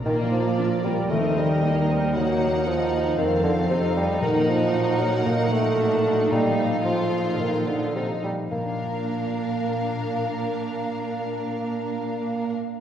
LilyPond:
<<
  \new Staff \with { instrumentName = "Violin section" } { \time 4/4 \key bes \major \tempo 4 = 113 d''2 ees''2 | ges''2 f''2 | ges''1 | f''2.~ f''8 r8 |
f''1~ | f''1 | }
  \new Staff \with { instrumentName = "Harp" } { \time 4/4 \key bes \major << { \tuplet 3/2 { bes,8 f8 f'8 bes'8 f''8 bes'8 ees8 bes8 bes'8 ees'8 bes''8 bes'8 } | \tuplet 3/2 { ees8 bes8 bes'8 ees'8 bes''8 bes'8 f8 a8 f'8 a'8 f''8 a'8 } | \tuplet 3/2 { bes,8 ges8 ees'8 ges'8 ees''8 ges'8 bes,8 ges8 ees'8 ges'4 ges'8 } | \tuplet 3/2 { bes,8 f8 ees'8 f'8 ees''8 f'8 bes,8 f8 ees'8 f'8 ees''8 f'8~ } |
f'1~ | f'1 | } \\ { <f d' f' bes'>1 | r1 | r1 | r1 |
<bes, bes d' f' d''>1~ | <bes, bes d' f' d''>1 | } >> }
  \new Staff \with { instrumentName = "Viola section" } { \time 4/4 \key bes \major << { bes'1~ | bes'2 a'2 | bes'1 | a'2.~ a'8 r8 |
r1 | r1 | } \\ { f'2 ees'2~ | ees'2 c'2 | ees'1~ | ees'2.~ ees'8 r8 |
d'1~ | d'1 | } >> }
  \new Staff \with { instrumentName = "Violin section" } { \time 4/4 \key bes \major bes4 d'8 bes8 c'4 bes8 c'8 | bes4 ees'4 c'4 ees'4~ | ees'2. d'4 | ees'4 f'2 ees'8 r8 |
bes'1~ | bes'1 | }
  \new Staff \with { instrumentName = "Bassoon" } { \clef bass \time 4/4 \key bes \major ees8 f4 g8 a8 g4. | ges4 f4 ees8 d8 c8 g8 | ees8 f4 ges8 bes8 a4. | g8 r8 f4 ees8 d8 c8 g8 |
bes1~ | bes1 | }
  \new Staff \with { instrumentName = "Cello section" } { \clef bass \time 4/4 \key bes \major bes,2 ees,2~ | ees,2 f,2 | bes,1~ | bes,2.~ bes,8 r8 |
bes,1~ | bes,1 | }
>>